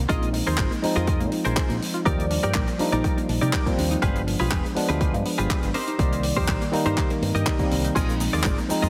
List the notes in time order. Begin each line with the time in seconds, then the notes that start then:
0.09 F3 G#3 C4 D#4 F4 G#4 A#4 D#5, kick, closed hi-hat
0.22 A#3, closed hi-hat
0.33 D#4, open hi-hat
0.46 D#2 F4 G#4 A#4 C5, open hi-hat
0.58 G#1 G#3, kick, clap, closed hi-hat
0.71 A#3, closed hi-hat
0.82 F3 G#3 C4 D#4, muted fingered electric bass stroke, open hi-hat
0.96 F2 F4 G#4 A#4 D#5, closed hi-hat
1.07 G#3, kick, closed hi-hat
1.20 A#2 A#3, closed hi-hat
1.32 D#4, open hi-hat
1.45 A#1 F4 G#4 A#4 C5, closed hi-hat
1.56 G#3, kick, clap, closed hi-hat
1.69 A#1 A#3, closed hi-hat
1.81 D#4, open hi-hat
1.94 F4, closed hi-hat
2.05 D#2 F3 G3 A#3 D#4 G4 A#4 D5, kick, closed hi-hat
2.19 A#3, closed hi-hat
2.30 D4, open hi-hat
2.43 G2 D#4 G4 A#4 D5, closed hi-hat
2.54 A#1 G3, kick, clap, closed hi-hat
2.67 A#3, closed hi-hat
2.79 F3 G3 A#3 D4 D#4, muted fingered electric bass stroke, open hi-hat
2.92 A#1 D#4 G4 A#4 D5, closed hi-hat
3.04 G3, kick, closed hi-hat
3.17 A#3, closed hi-hat
3.29 A#1 D4, open hi-hat
3.41 C3 D#4 G4 A#4 D5, closed hi-hat
3.53 G3, kick, clap, closed hi-hat
3.66 F3 G3 A#3 C4, kick, closed hi-hat
3.78 D#2 D4, open hi-hat
3.91 D#4, closed hi-hat
4.02 G1 F3 G3 G#3 B3 D4 F4 G4 G#4 B4, kick, closed hi-hat
4.15 G#3, closed hi-hat
4.28 B3, open hi-hat
4.39 B1 F4 G4 G#4 B4, open hi-hat
4.51 G3, kick, clap, closed hi-hat
4.65 G#3, closed hi-hat
4.75 F3 G#3 B3 D4, muted fingered electric bass stroke, open hi-hat
4.89 D2 D4 F4 G4 G#4 B4, closed hi-hat
5.01 G3, kick, closed hi-hat
5.14 G2 G#3, closed hi-hat
5.25 B3, open hi-hat
5.38 G1 D4 F4 G4 G#4 B4, closed hi-hat
5.50 G3, kick, clap, closed hi-hat
5.62 G1 G#3, closed hi-hat
5.74 C4 D#4 G4 A#4 C5, open hi-hat
5.87 D#4, closed hi-hat
5.98 C2 D#3 G3 A#3 D5, kick, closed hi-hat
6.12 A#3, closed hi-hat
6.23 C4, open hi-hat
6.37 F2 D#4 G4 A#4 C5, kick
6.48 A#1 G3, kick, clap, closed hi-hat
6.61 A#3, closed hi-hat
6.72 D#3 G3 A#3 C4 D#4, muted fingered electric bass stroke, open hi-hat
6.86 G2 D#4 G4 A#4 C5, closed hi-hat
6.97 G3, kick, clap, closed hi-hat
7.10 A#3, closed hi-hat
7.22 G2 C4, open hi-hat
7.35 G2 D#4 G4 A#4 D#5, closed hi-hat
7.46 G3 A#4, kick, clap, closed hi-hat
7.59 D#3 G3 A#3 C4, kick, closed hi-hat
7.71 C2 C4, open hi-hat
7.84 D#4, closed hi-hat
7.95 A#1 F3 G#3 C4 D#4 F4 G#4 A#4 D#5, kick, closed hi-hat, crash, shaker
8.09 A#3, closed hi-hat, shaker
8.20 D#4, open hi-hat, muted conga, shaker
8.33 D#2 F4 G#4 A#4 D5, open hi-hat, shaker
8.43 G#1 G#3, kick, clap, closed hi-hat, muted conga, shaker
8.58 A#3, closed hi-hat, shaker
8.69 F3 G#3 C4 D#4, muted fingered electric bass stroke, open hi-hat, shaker
8.82 F2 F4 G#4 A#4 D#5, closed hi-hat, muted conga, shaker